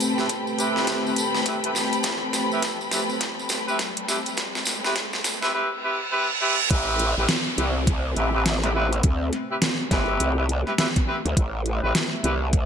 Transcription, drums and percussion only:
0.00 closed hi-hat medium
0.00 tambourine medium
0.18 snare medium
0.18 tambourine soft
0.29 kick medium
0.29 closed hi-hat medium
0.29 tambourine medium
0.47 tambourine soft
0.58 closed hi-hat medium
0.58 tambourine medium
0.76 snare medium
0.76 tambourine soft
0.87 kick loud
0.87 snare medium
0.87 closed hi-hat medium
0.87 tambourine medium
1.06 tambourine soft
1.16 closed hi-hat medium
1.16 tambourine medium
1.34 snare medium
1.34 tambourine soft
1.46 kick loud
1.46 closed hi-hat medium
1.46 tambourine soft
1.64 closed hi-hat medium
1.75 snare medium
1.75 tambourine loud
1.78 snare medium
1.81 snare soft
1.84 snare soft
1.90 snare soft
1.90 closed hi-hat medium
1.90 tambourine soft
2.03 kick loud
2.03 snare medium
2.03 closed hi-hat medium
2.03 tambourine medium
2.33 snare medium
2.33 closed hi-hat medium
2.33 tambourine loud
2.52 tambourine soft
2.62 kick loud
2.62 snare medium
2.62 closed hi-hat medium
2.62 tambourine medium
2.81 tambourine soft
2.91 snare medium
2.91 closed hi-hat medium
2.91 tambourine loud
3.09 tambourine soft
3.21 kick loud
3.21 snare medium
3.21 closed hi-hat medium
3.21 tambourine medium
3.39 tambourine soft
3.49 snare medium
3.49 closed hi-hat medium
3.49 tambourine loud
3.68 tambourine soft
3.79 kick loud
3.79 snare medium
3.79 closed hi-hat medium
3.79 tambourine soft
3.97 closed hi-hat medium
4.08 snare medium
4.08 tambourine loud
4.26 closed hi-hat medium
4.26 tambourine soft
4.37 kick loud
4.37 snare loud
4.37 closed hi-hat medium
4.37 tambourine medium
4.55 snare medium
4.55 tambourine soft
4.65 snare medium
4.65 closed hi-hat medium
4.65 tambourine loud
4.84 snare medium
4.84 tambourine soft
4.96 kick medium
4.96 snare loud
4.96 closed hi-hat medium
4.96 tambourine soft
5.13 snare medium
5.13 tambourine soft
5.24 snare loud
5.24 closed hi-hat medium
5.24 tambourine loud
5.42 snare medium
5.42 tambourine soft
6.70 kick loud
6.70 closed hi-hat medium
6.99 closed hi-hat medium
7.29 snare loud
7.29 closed hi-hat medium
7.58 closed hi-hat medium
7.87 kick loud
7.87 closed hi-hat medium
8.16 closed hi-hat medium
8.46 snare loud
8.46 closed hi-hat medium
8.63 snare medium
8.63 closed hi-hat medium
8.93 closed hi-hat medium
9.03 kick loud
9.03 closed hi-hat medium
9.33 snare soft
9.33 closed hi-hat medium
9.62 snare loud
9.62 closed hi-hat medium
9.91 kick medium
9.91 snare soft
9.91 closed hi-hat medium
10.20 closed hi-hat medium
10.49 closed hi-hat medium
10.67 snare soft
10.78 snare loud
10.78 closed hi-hat medium
10.96 kick loud
10.96 closed hi-hat medium
11.26 closed hi-hat medium
11.37 kick loud
11.37 closed hi-hat medium
11.66 closed hi-hat medium
11.95 snare loud
11.95 closed hi-hat medium
12.24 closed hi-hat medium
12.53 kick loud
12.53 closed hi-hat medium

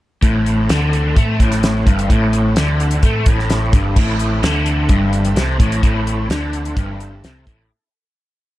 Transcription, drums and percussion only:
0.23 kick loud
0.23 closed hi-hat medium
0.46 closed hi-hat medium
0.69 snare loud
0.69 closed hi-hat medium
0.93 closed hi-hat medium
1.16 kick loud
1.16 closed hi-hat medium
1.40 kick medium
1.40 closed hi-hat medium
1.52 snare soft
1.52 closed hi-hat medium
1.63 snare loud
1.63 closed hi-hat medium
1.87 kick loud
1.87 closed hi-hat medium
1.99 closed hi-hat medium
2.10 kick medium
2.10 closed hi-hat medium
2.33 closed hi-hat medium
2.56 snare loud
2.56 closed hi-hat medium
2.80 closed hi-hat medium
2.91 closed hi-hat medium
3.03 kick loud
3.03 closed hi-hat medium
3.26 kick loud
3.26 closed hi-hat medium
3.39 snare soft
3.50 snare medium
3.50 closed hi-hat medium
3.73 kick loud
3.73 closed hi-hat medium
3.96 kick loud
3.96 crash medium
4.19 closed hi-hat medium
4.43 snare loud
4.43 closed hi-hat medium
4.66 closed hi-hat medium
4.89 kick loud
4.89 closed hi-hat medium
5.13 closed hi-hat medium
5.25 closed hi-hat medium
5.36 snare loud
5.36 closed hi-hat medium
5.60 kick loud
5.60 closed hi-hat medium
5.72 closed hi-hat medium
5.83 kick medium
5.83 closed hi-hat medium
6.07 closed hi-hat medium
6.30 snare loud
6.30 closed hi-hat medium
6.53 closed hi-hat medium
6.65 closed hi-hat medium
6.77 kick loud
6.77 closed hi-hat medium
7.00 closed hi-hat medium
7.24 snare loud
7.24 closed hi-hat medium
7.47 kick loud
7.47 closed hi-hat medium

